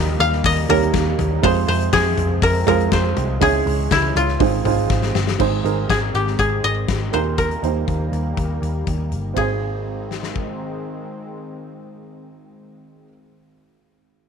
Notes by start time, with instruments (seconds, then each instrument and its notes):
Already playing: picked electric bass D#2, upright piano A#2 G3 A#3 D#4 G4 A#4, analog synth pad G3 A#3 D#4, koto D#5 F5
0.20 picked electric bass D#2, koto F5, hi-hat pedal, open hi-hat
0.32 snare
0.44 picked electric bass D#2, koto D#5, kick, hi-hat pedal, open hi-hat
0.57 open hi-hat
0.69 picked electric bass D#2, upright piano G3 A#3 D#4 G4 C#5, koto A#4, floor tom, hi-hat pedal, open hi-hat
0.82 hi-hat pedal
0.94 picked electric bass D#2, kick, snare, hi-hat pedal, open hi-hat
1.18 picked electric bass D#2, floor tom, hi-hat pedal, open hi-hat
1.43 picked electric bass F2, upright piano C3 G#3 C4 F4 G#4 C5, analog synth pad F3 G#3 C4, koto C5, kick, hi-hat pedal, open hi-hat
1.56 open hi-hat
1.68 picked electric bass F2, koto C5, hi-hat pedal, open hi-hat
1.80 hi-hat pedal
1.93 picked electric bass F2, koto G#4, kick, snare, hi-hat pedal, open hi-hat
2.17 picked electric bass F2, floor tom, hi-hat pedal, open hi-hat
2.42 picked electric bass F2, koto A#4, kick, hi-hat pedal, open hi-hat
2.55 open hi-hat
2.67 picked electric bass F2, upright piano G#3 C4 F4 G#4 C5, koto A#4, floor tom, hi-hat pedal, open hi-hat
2.80 hi-hat pedal
2.92 picked electric bass F2, koto C5, kick, snare, hi-hat pedal, open hi-hat
3.16 picked electric bass C2, floor tom, hi-hat pedal, open hi-hat
3.41 picked electric bass C#2, upright piano G#2 G#3 C#4 E4 G#4 C#5, analog synth pad E3 C#4, koto G#4, kick, hi-hat pedal, open hi-hat
3.66 picked electric bass C#2, hi-hat pedal, open hi-hat
3.91 picked electric bass C#2, koto E4, kick, snare, hi-hat pedal, open hi-hat
4.16 picked electric bass C#2, koto F4, hi-hat pedal, open hi-hat
4.28 snare
4.40 picked electric bass G#1, upright piano G#2 D#3 C4 D#4 F4 G#4 C5, analog synth pad F3 C4, kick, hi-hat pedal, open hi-hat
4.64 picked electric bass G#1, upright piano C4 D#4 F4 G#4 C5, floor tom, hi-hat pedal, open hi-hat
4.90 picked electric bass G#1, kick, snare
5.02 snare
5.15 picked electric bass G1, snare
5.27 snare
5.39 picked electric bass G#1, upright piano G#2 D#3 C4 D#4 G#4 C5, analog synth pad D#3 G#3 C4, kick, crash
5.64 picked electric bass G#1, upright piano C4 D#4 G#4 A#4, closed hi-hat
5.90 picked electric bass G#1, koto G#4, kick, snare, closed hi-hat
6.14 picked electric bass G#1, koto G4, closed hi-hat
6.27 snare
6.39 picked electric bass G#1, koto G#4, kick, closed hi-hat
6.64 picked electric bass G#1, koto D#5, closed hi-hat
6.88 picked electric bass G#1, kick, snare, closed hi-hat
7.12 picked electric bass D#2, upright piano A#2 A#3 D#4 G4 A#4, analog synth pad G3 A#3, koto C5, closed hi-hat
7.38 koto A#4, kick, closed hi-hat
7.51 closed hi-hat
7.62 picked electric bass D#2, upright piano A#3 D#4 G4 C5, closed hi-hat
7.88 picked electric bass D#2, kick, closed hi-hat
8.12 picked electric bass D#2, closed hi-hat
8.37 picked electric bass D#2, kick, closed hi-hat
8.62 picked electric bass D#2, closed hi-hat
8.87 picked electric bass D#2, kick, closed hi-hat
9.12 picked electric bass G1, closed hi-hat
9.34 picked electric bass G#1, upright piano G#1 C4 D#4, analog synth pad D#3 G#3 C4, koto G#4, kick, ride
9.38 upright piano G#4 C5
10.11 snare
10.23 snare
10.36 kick